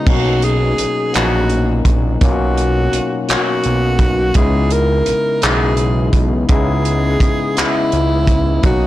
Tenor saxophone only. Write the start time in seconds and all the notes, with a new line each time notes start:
0.08 F#4
0.44 G#4
1.15 F#4
2.23 F#4
3.30 F#4
4.36 G#4
4.72 A#4
5.43 G#4
6.50 G#4
7.59 E4
8.66 F#4